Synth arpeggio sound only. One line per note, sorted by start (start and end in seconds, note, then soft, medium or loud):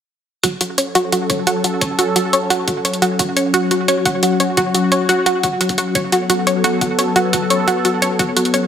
0.43 0.60 F#4 loud
0.61 0.67 F#4 medium
0.78 0.89 C#5 medium
0.95 1.11 F#4 loud
1.12 1.19 F#4 medium
1.30 1.41 C#5 medium
1.47 1.63 F#4 loud
1.64 1.71 F#4 medium
1.81 1.92 C#5 medium
1.99 2.15 F#4 loud
2.16 2.22 F#4 medium
2.33 2.44 C#5 medium
2.50 2.66 F#4 loud
2.68 2.74 F#4 medium
2.85 2.96 C#5 medium
3.02 3.18 F#4 medium
3.19 3.26 F#4 medium
3.37 3.48 C#5 medium
3.54 3.70 F#4 loud
3.71 3.78 F#4 medium
3.88 3.99 C#5 medium
4.06 4.22 F#4 loud
4.23 4.29 F#4 medium
4.40 4.51 C#5 medium
4.57 4.73 F#4 loud
4.74 4.81 F#4 medium
4.92 5.03 C#5 medium
5.09 5.25 F#4 loud
5.26 5.33 F#4 medium
5.43 5.50 F#4 medium
5.61 5.77 F#4 medium
5.78 5.94 F#4 loud
5.95 6.06 C#5 medium
6.12 6.28 F#4 loud
6.30 6.36 F#4 medium
6.47 6.58 C#5 medium
6.64 6.80 F#4 loud
6.81 6.88 F#4 medium
6.99 7.10 C#5 medium
7.16 7.32 F#4 medium
7.33 7.40 F#4 medium
7.50 7.61 C#5 medium
7.68 7.84 F#4 loud
7.85 7.91 F#4 medium
8.02 8.13 C#5 medium
8.19 8.35 F#4 loud
8.37 8.43 F#4 medium
8.54 8.65 C#5 medium